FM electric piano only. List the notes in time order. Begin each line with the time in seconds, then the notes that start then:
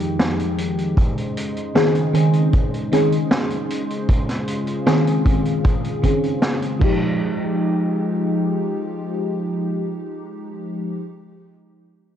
Already playing: F3 G#3 D#4 G4
1.75 D#3 C4 C#4 G#4
2.13 D#3 C4 C#4 G#4
2.92 D#3 C4 C#4 G#4
4.86 D#3 C4 C#4 G#4
5.25 D#3 C4 C#4 G#4
6.02 D#3 C4 C#4 G#4
6.79 F3 G#3 D#4
6.84 G4